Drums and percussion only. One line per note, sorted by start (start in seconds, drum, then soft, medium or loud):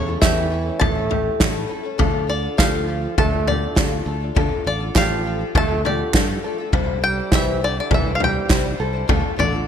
0.22 kick loud
0.22 snare loud
0.22 clap medium
0.81 kick loud
0.81 floor tom loud
1.11 floor tom medium
1.40 kick loud
1.40 snare loud
1.40 clap loud
1.99 kick loud
1.99 floor tom loud
2.59 kick loud
2.59 snare loud
2.59 clap loud
3.18 kick loud
3.18 floor tom loud
3.48 floor tom medium
3.76 kick loud
3.76 snare loud
3.76 clap loud
4.36 kick loud
4.36 floor tom loud
4.95 kick loud
4.95 snare loud
4.95 clap loud
5.55 kick loud
5.55 floor tom loud
5.85 floor tom medium
6.14 kick loud
6.14 snare loud
6.14 clap loud
6.73 kick loud
6.73 floor tom loud
7.32 kick loud
7.32 snare loud
7.32 clap medium
7.91 kick loud
7.91 floor tom loud
8.20 floor tom medium
8.50 kick loud
8.50 snare loud
8.50 clap medium
9.09 kick loud
9.09 floor tom loud
9.39 floor tom medium